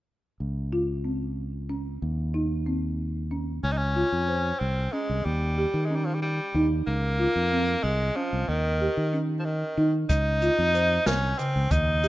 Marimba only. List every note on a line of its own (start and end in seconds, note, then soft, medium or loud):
0.73 0.97 F4 medium
1.05 1.54 C4 soft
1.70 1.94 C#4 medium
2.34 2.59 D#4 medium
2.66 3.16 C4 medium
3.31 3.56 C#4 medium
3.96 4.21 F4 medium
4.29 4.78 C5 medium
4.93 5.18 C#4 medium
5.58 5.83 G4 medium
5.90 6.39 C#4 medium
6.55 6.80 D#4 medium
7.19 7.44 F4 medium
7.52 8.01 C4 medium
8.16 8.41 C#4 medium
8.81 9.06 G4 medium
9.13 9.62 C#4 medium
9.78 10.02 D#4 medium
10.42 10.67 F4 medium
10.75 11.24 C5 medium
11.39 11.64 C#3 medium
12.04 12.08 G4 medium